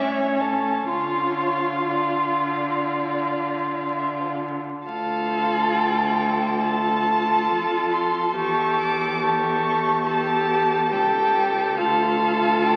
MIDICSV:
0, 0, Header, 1, 5, 480
1, 0, Start_track
1, 0, Key_signature, -1, "minor"
1, 0, Tempo, 986842
1, 439, Time_signature, 4, 2, 24, 8
1, 2367, Tempo, 872093
1, 4767, Tempo, 852273
1, 6758, End_track
2, 0, Start_track
2, 0, Title_t, "Violin"
2, 0, Program_c, 0, 40
2, 0, Note_on_c, 0, 76, 80
2, 194, Note_on_c, 0, 73, 56
2, 201, Note_off_c, 0, 76, 0
2, 433, Note_off_c, 0, 73, 0
2, 436, Note_on_c, 0, 73, 70
2, 927, Note_on_c, 0, 74, 51
2, 934, Note_off_c, 0, 73, 0
2, 1935, Note_on_c, 0, 76, 39
2, 1942, Note_off_c, 0, 74, 0
2, 1999, Note_on_c, 0, 74, 37
2, 2006, Note_off_c, 0, 76, 0
2, 2043, Note_on_c, 0, 72, 37
2, 2050, Note_off_c, 0, 74, 0
2, 2091, Note_on_c, 0, 74, 33
2, 2099, Note_off_c, 0, 72, 0
2, 2139, Note_off_c, 0, 74, 0
2, 2367, Note_on_c, 0, 77, 88
2, 2852, Note_on_c, 0, 79, 80
2, 2860, Note_off_c, 0, 77, 0
2, 3322, Note_on_c, 0, 81, 90
2, 3330, Note_off_c, 0, 79, 0
2, 4043, Note_on_c, 0, 84, 71
2, 4052, Note_off_c, 0, 81, 0
2, 4289, Note_on_c, 0, 85, 84
2, 4298, Note_off_c, 0, 84, 0
2, 4525, Note_off_c, 0, 85, 0
2, 4528, Note_on_c, 0, 86, 90
2, 4761, Note_on_c, 0, 85, 92
2, 4770, Note_off_c, 0, 86, 0
2, 5239, Note_on_c, 0, 81, 88
2, 5247, Note_off_c, 0, 85, 0
2, 5719, Note_on_c, 0, 79, 93
2, 5727, Note_off_c, 0, 81, 0
2, 6199, Note_off_c, 0, 79, 0
2, 6202, Note_on_c, 0, 77, 90
2, 6684, Note_on_c, 0, 79, 95
2, 6692, Note_off_c, 0, 77, 0
2, 6758, Note_off_c, 0, 79, 0
2, 6758, End_track
3, 0, Start_track
3, 0, Title_t, "Violin"
3, 0, Program_c, 1, 40
3, 0, Note_on_c, 1, 73, 53
3, 197, Note_on_c, 1, 69, 46
3, 204, Note_off_c, 1, 73, 0
3, 431, Note_off_c, 1, 69, 0
3, 434, Note_on_c, 1, 65, 49
3, 2115, Note_off_c, 1, 65, 0
3, 2370, Note_on_c, 1, 69, 60
3, 3305, Note_off_c, 1, 69, 0
3, 3335, Note_on_c, 1, 69, 55
3, 4274, Note_off_c, 1, 69, 0
3, 4292, Note_on_c, 1, 69, 67
3, 4759, Note_off_c, 1, 69, 0
3, 4773, Note_on_c, 1, 69, 55
3, 5233, Note_off_c, 1, 69, 0
3, 5237, Note_on_c, 1, 69, 56
3, 5708, Note_off_c, 1, 69, 0
3, 5717, Note_on_c, 1, 69, 66
3, 6195, Note_off_c, 1, 69, 0
3, 6208, Note_on_c, 1, 69, 79
3, 6758, Note_off_c, 1, 69, 0
3, 6758, End_track
4, 0, Start_track
4, 0, Title_t, "Viola"
4, 0, Program_c, 2, 41
4, 0, Note_on_c, 2, 61, 49
4, 434, Note_off_c, 2, 61, 0
4, 436, Note_on_c, 2, 65, 44
4, 919, Note_off_c, 2, 65, 0
4, 926, Note_on_c, 2, 65, 47
4, 2245, Note_off_c, 2, 65, 0
4, 2363, Note_on_c, 2, 65, 61
4, 3301, Note_off_c, 2, 65, 0
4, 3319, Note_on_c, 2, 65, 64
4, 4266, Note_off_c, 2, 65, 0
4, 4289, Note_on_c, 2, 67, 60
4, 4758, Note_off_c, 2, 67, 0
4, 4763, Note_on_c, 2, 67, 62
4, 5228, Note_off_c, 2, 67, 0
4, 5237, Note_on_c, 2, 67, 64
4, 5707, Note_off_c, 2, 67, 0
4, 5716, Note_on_c, 2, 67, 67
4, 6206, Note_on_c, 2, 65, 72
4, 6215, Note_off_c, 2, 67, 0
4, 6758, Note_off_c, 2, 65, 0
4, 6758, End_track
5, 0, Start_track
5, 0, Title_t, "Cello"
5, 0, Program_c, 3, 42
5, 0, Note_on_c, 3, 45, 44
5, 440, Note_off_c, 3, 45, 0
5, 442, Note_on_c, 3, 50, 45
5, 2248, Note_off_c, 3, 50, 0
5, 2370, Note_on_c, 3, 38, 56
5, 3810, Note_on_c, 3, 41, 53
5, 3818, Note_off_c, 3, 38, 0
5, 4287, Note_off_c, 3, 41, 0
5, 4291, Note_on_c, 3, 40, 63
5, 5723, Note_on_c, 3, 37, 59
5, 5731, Note_off_c, 3, 40, 0
5, 6208, Note_off_c, 3, 37, 0
5, 6214, Note_on_c, 3, 38, 71
5, 6758, Note_off_c, 3, 38, 0
5, 6758, End_track
0, 0, End_of_file